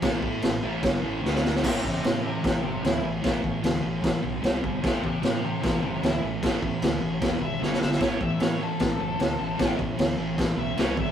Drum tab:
CC |x---x---x-------|x---x---x---x---|x---x---x---x---|x---x---x---x---|
SD |o---o---o---oooo|o---o---o---o---|o---o---o---o---|o---o---o---o---|
BD |o-o-----o-------|o-o-----o-------|o-o-----o-----o-|o-o-----o-------|

CC |x---x---x-------|x---x---x---x---|x---x---x---x---|
SD |o---o---o---oooo|o---o---o---o---|o---o---o---o---|
BD |o-o-----o-------|o-o-----o-------|o-o-----o-----o-|